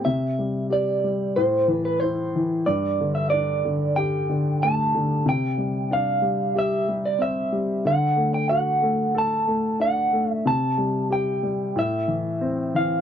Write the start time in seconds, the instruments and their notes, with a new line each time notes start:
0.05 upright piano C3, clean electric guitar E5
0.39 upright piano G3
0.70 upright piano G4, clean electric guitar D5
1.04 upright piano G3
1.36 upright piano A2, clean electric guitar C5
1.68 upright piano E3, clean electric guitar B4
1.85 clean electric guitar B4
2.00 upright piano E4, clean electric guitar C5
2.36 upright piano E3
2.66 upright piano G2, clean electric guitar D5
3.00 upright piano D3
3.15 clean electric guitar E5
3.30 upright piano D4, clean electric guitar D5
3.65 upright piano D3
3.96 upright piano G4, clean electric guitar G5
4.30 upright piano D3
4.63 upright piano A3, clean electric guitar A5
4.95 upright piano D3
5.26 upright piano C3, clean electric guitar G5
5.58 upright piano G3
5.91 upright piano D4, clean electric guitar F5
6.22 upright piano G3
6.55 upright piano G4, clean electric guitar E5
6.88 upright piano G3
7.05 clean electric guitar D5
7.19 upright piano C4, clean electric guitar E5
7.52 upright piano G3
7.85 upright piano D3, clean electric guitar F#5
8.16 upright piano A3
8.34 clean electric guitar G5
8.49 upright piano F#4, clean electric guitar F#5
8.82 upright piano A3
9.15 upright piano A4, clean electric guitar A5
9.47 upright piano A3
9.80 upright piano D4, clean electric guitar F#5
10.13 upright piano A3
10.32 clean electric guitar E5
10.45 upright piano C3, clean electric guitar A5
10.78 upright piano G3
11.10 upright piano G4, clean electric guitar G5
11.43 upright piano G3
11.76 upright piano A2, clean electric guitar E5
12.08 upright piano E3
12.41 upright piano C4
12.74 upright piano E3, clean electric guitar F5